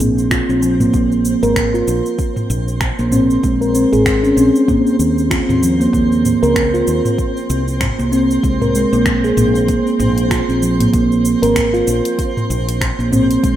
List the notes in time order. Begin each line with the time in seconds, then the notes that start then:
Already playing: C4 C5
0.00 A#1, mid tom, shaker
0.18 shaker
0.31 F4, finger snap, kick, shaker
0.49 A#1 C4, shaker
0.62 F3, shaker
0.80 A#3, mid tom, shaker
0.94 A#1 A#3, kick, shaker
1.12 shaker
1.25 shaker
1.43 G#1 A#4, shaker
1.56 finger snap, kick, mid tom, shaker
1.74 F4, shaker
1.88 A#1, shaker
2.06 shaker
2.19 kick, shaker
2.36 mid tom, shaker
2.50 A#1, shaker
2.68 shaker
2.81 finger snap, kick, shaker
2.99 A#1 A#3, shaker
3.12 C4, mid tom, shaker
3.30 shaker
3.43 A#1 G#3, kick, shaker
3.61 A#4, shaker
3.75 C4, shaker
3.93 G#1 G#4, mid tom, shaker
4.06 finger snap, kick, shaker
4.23 C#4, shaker
4.37 A#1 C4, shaker
4.55 shaker
4.68 A#3, kick, mid tom, shaker
4.87 shaker
4.99 D#2, shaker
5.18 shaker
5.30 F4, finger snap, kick, shaker
5.49 D#2 C4, mid tom, shaker
5.62 F3, shaker
5.80 A#3, shaker
5.93 D#2 A#3, kick, shaker
6.12 shaker
6.25 mid tom, shaker
6.43 C#2 A#4, shaker
6.56 finger snap, kick, shaker
6.74 F4, shaker
6.87 D#2, shaker
7.05 mid tom, shaker
7.18 kick, shaker
7.37 shaker
7.50 C2, shaker
7.68 shaker
7.81 finger snap, kick, mid tom, shaker
7.99 C2 A#3, shaker
8.12 C4, shaker
8.31 shaker
8.43 C2 G#3, kick, shaker
8.61 A#4, mid tom, shaker
8.75 G#3, shaker
8.93 A#1 A#3, shaker
9.06 finger snap, kick, shaker
9.24 G#4, shaker
9.37 A#1 A#3, mid tom, shaker
9.55 shaker
9.68 A#3, kick, closed hi-hat, shaker
9.87 shaker
9.99 A#1, mid tom, shaker
10.18 closed hi-hat, shaker
10.31 F4, finger snap, kick, closed hi-hat, shaker
10.49 A#1 C4, shaker
10.62 F3, shaker
10.80 A#3, closed hi-hat, mid tom, shaker
10.93 A#1 A#3, kick, closed hi-hat, shaker
11.12 shaker
11.25 shaker
11.42 G#1 A#4, closed hi-hat, shaker
11.56 finger snap, kick, closed hi-hat, mid tom, shaker
11.74 F4, shaker
11.87 A#1, shaker
12.05 closed hi-hat, shaker
12.19 kick, closed hi-hat, shaker
12.37 mid tom, shaker
12.50 A#1, shaker
12.69 closed hi-hat, shaker
12.81 finger snap, kick, closed hi-hat, shaker
12.99 A#1 A#3, shaker
13.12 C4, mid tom, shaker
13.31 closed hi-hat, shaker
13.43 A#1 G#3, kick, closed hi-hat, shaker